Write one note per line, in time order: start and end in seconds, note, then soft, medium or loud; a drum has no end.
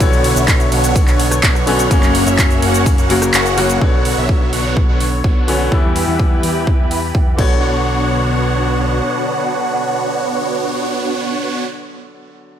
0.00 0.34 B1 loud
0.00 1.64 D3 medium
0.00 1.89 D3 medium
0.00 1.64 F#3 medium
0.00 0.33 B3 loud
0.00 1.89 B3 medium
0.00 1.64 B3 medium
0.00 0.33 D4 medium
0.00 0.33 F#4 medium
0.00 0.33 C#5 medium
0.00 3.78 C#5 medium
0.00 1.65 C#5 loud
0.00 0.33 F#5 loud
0.00 kick loud
0.00 closed hi-hat medium
0.00 ride medium
0.00 shaker medium
0.13 shaker soft
0.24 open hi-hat loud
0.24 ride medium
0.36 0.69 B1 loud
0.36 0.69 B3 medium
0.36 0.69 D4 medium
0.36 0.69 F#4 medium
0.36 0.69 C#5 medium
0.36 0.69 E5 medium
0.36 closed hi-hat medium
0.36 shaker medium
0.48 kick loud
0.48 clap loud
0.48 closed hi-hat medium
0.48 ride medium
0.48 shaker medium
0.60 closed hi-hat soft
0.60 shaker soft
0.72 1.05 B1 loud
0.72 0.97 B3 medium
0.72 0.97 D4 medium
0.72 0.97 F#4 medium
0.72 0.97 C#5 medium
0.72 0.97 F#5 loud
0.72 open hi-hat loud
0.72 ride medium
0.84 closed hi-hat medium
0.84 shaker medium
0.96 kick loud
0.96 closed hi-hat medium
0.96 ride medium
0.96 shaker medium
1.07 1.41 B1 loud
1.07 1.23 B3 medium
1.07 1.23 D4 medium
1.07 1.23 F#4 medium
1.07 1.23 C#5 medium
1.07 1.23 F#5 medium
1.07 clap soft
1.07 closed hi-hat soft
1.07 shaker soft
1.20 open hi-hat loud
1.20 ride medium
1.31 cross-stick medium
1.31 closed hi-hat medium
1.31 shaker medium
1.43 1.89 B1 loud
1.43 1.88 B3 medium
1.43 1.88 D4 medium
1.43 1.88 F#4 medium
1.43 1.88 C#5 medium
1.43 1.88 F#5 medium
1.43 kick loud
1.43 clap loud
1.43 closed hi-hat medium
1.43 ride medium
1.43 shaker medium
1.55 cross-stick medium
1.55 shaker soft
1.66 1.88 D3 medium
1.66 1.88 F#3 medium
1.66 1.88 B3 medium
1.66 1.88 C#4 loud
1.66 open hi-hat loud
1.66 ride medium
1.79 closed hi-hat medium
1.79 shaker medium
1.90 2.24 F#1 loud
1.90 3.07 C#3 medium
1.90 3.07 F#3 medium
1.90 3.79 F#3 medium
1.90 3.79 A#3 medium
1.90 2.24 A#3 loud
1.90 3.08 A#3 medium
1.90 2.24 C#4 medium
1.90 3.08 C#4 loud
1.90 2.24 F#4 loud
1.90 2.24 C#5 medium
1.90 2.24 F#5 loud
1.90 kick loud
1.90 closed hi-hat medium
1.90 ride medium
1.90 shaker medium
2.03 clap soft
2.03 closed hi-hat soft
2.03 shaker soft
2.15 open hi-hat loud
2.15 ride medium
2.27 2.60 F#1 medium
2.27 2.59 A#3 medium
2.27 2.59 C#4 medium
2.27 2.60 F#4 medium
2.27 2.60 C#5 medium
2.27 2.60 E5 medium
2.27 closed hi-hat medium
2.27 shaker medium
2.39 kick loud
2.39 clap loud
2.39 closed hi-hat medium
2.39 ride medium
2.39 shaker medium
2.50 closed hi-hat soft
2.50 shaker soft
2.62 2.96 F#1 loud
2.62 2.88 A#3 medium
2.62 2.88 C#4 medium
2.62 2.88 F#4 medium
2.62 2.88 C#5 medium
2.62 2.88 F#5 loud
2.62 open hi-hat loud
2.62 ride medium
2.74 closed hi-hat medium
2.74 shaker medium
2.86 kick loud
2.86 closed hi-hat medium
2.86 ride medium
2.86 shaker medium
2.98 3.31 F#1 loud
2.98 3.14 A#3 medium
2.98 3.14 C#4 medium
2.98 3.14 F#4 medium
2.98 3.14 C#5 medium
2.98 3.14 F#5 medium
2.98 closed hi-hat soft
2.98 shaker soft
3.09 3.54 C#3 medium
3.09 3.55 F#3 medium
3.09 3.55 A#3 medium
3.09 3.55 F#4 loud
3.09 open hi-hat loud
3.09 ride medium
3.22 cross-stick medium
3.22 closed hi-hat medium
3.22 shaker medium
3.34 3.79 F#1 loud
3.34 3.79 A#3 medium
3.34 3.79 C#4 medium
3.34 3.79 F#4 medium
3.34 3.79 C#5 medium
3.34 3.79 F#5 medium
3.34 clap loud
3.34 closed hi-hat medium
3.34 ride medium
3.34 shaker medium
3.46 closed hi-hat soft
3.46 shaker soft
3.57 3.78 C#3 loud
3.57 3.78 F#3 medium
3.57 3.79 A#3 medium
3.57 3.79 F#4 loud
3.57 cross-stick medium
3.57 open hi-hat loud
3.57 ride medium
3.70 closed hi-hat medium
3.70 shaker medium
3.80 4.15 B1 medium
3.80 5.45 D3 medium
3.80 5.70 D3 medium
3.80 5.45 F#3 medium
3.80 4.14 B3 loud
3.80 5.70 B3 medium
3.80 5.45 B3 medium
3.80 4.14 D4 medium
3.80 4.14 F#4 medium
3.80 4.14 C#5 medium
3.80 5.70 C#5 medium
3.80 5.46 C#5 medium
3.80 4.14 F#5 loud
3.80 kick loud
4.05 open hi-hat loud
4.17 4.50 B1 medium
4.17 4.50 B3 medium
4.17 4.50 D4 medium
4.17 4.50 F#4 medium
4.17 4.50 C#5 medium
4.17 4.50 E5 medium
4.29 kick loud
4.53 4.86 B1 medium
4.53 4.78 B3 medium
4.53 4.78 D4 medium
4.53 4.78 F#4 medium
4.53 4.78 C#5 medium
4.53 4.78 F#5 medium
4.53 open hi-hat loud
4.77 kick loud
4.89 5.22 B1 medium
4.89 5.04 B3 medium
4.89 5.04 D4 medium
4.89 5.04 F#4 medium
4.89 5.04 C#5 medium
4.89 5.04 F#5 medium
5.00 open hi-hat loud
5.24 5.69 B1 loud
5.24 5.69 B3 medium
5.24 5.69 D4 medium
5.24 5.69 F#4 medium
5.24 5.69 C#5 medium
5.24 5.69 F#5 medium
5.24 kick loud
5.47 5.69 D3 medium
5.47 5.69 F#3 medium
5.47 5.69 B3 medium
5.47 5.69 C#4 medium
5.47 open hi-hat loud
5.71 6.05 E2 medium
5.71 7.35 E3 medium
5.71 7.37 E3 medium
5.71 7.36 G3 medium
5.71 6.05 B3 loud
5.71 7.36 B3 medium
5.71 7.37 E4 medium
5.71 6.05 E4 medium
5.71 7.36 E4 medium
5.71 7.37 G4 medium
5.71 6.05 G4 medium
5.71 7.37 B4 medium
5.71 6.05 E5 medium
5.71 6.05 G5 loud
5.71 kick loud
5.96 open hi-hat loud
6.08 6.41 E2 loud
6.08 6.40 B3 medium
6.08 6.40 E4 medium
6.08 6.40 G4 medium
6.08 6.40 E5 medium
6.08 6.40 F#5 medium
6.20 kick loud
6.43 6.77 E2 medium
6.43 6.69 B3 medium
6.43 6.69 E4 medium
6.43 6.69 G4 medium
6.43 6.69 E5 medium
6.43 6.69 G5 medium
6.43 open hi-hat loud
6.67 kick loud
6.79 7.12 E2 medium
6.79 6.95 B3 medium
6.79 6.95 E4 medium
6.79 6.95 G4 medium
6.79 6.95 E5 medium
6.79 6.95 G5 medium
6.91 open hi-hat loud
7.15 7.38 E2 medium
7.15 7.37 B3 medium
7.15 7.39 E4 medium
7.15 7.39 G4 medium
7.15 7.39 E5 medium
7.15 7.39 G5 medium
7.15 kick loud
7.37 9.01 B1 medium
7.37 11.64 B2 medium
7.37 11.62 D3 medium
7.37 11.64 D3 medium
7.37 11.63 F#3 medium
7.37 11.64 B3 medium
7.37 11.64 D4 medium
7.37 11.64 F#4 medium
7.37 11.64 C#5 medium
7.37 11.66 C#5 medium
7.37 11.64 F#5 medium
7.37 kick loud
7.37 crash medium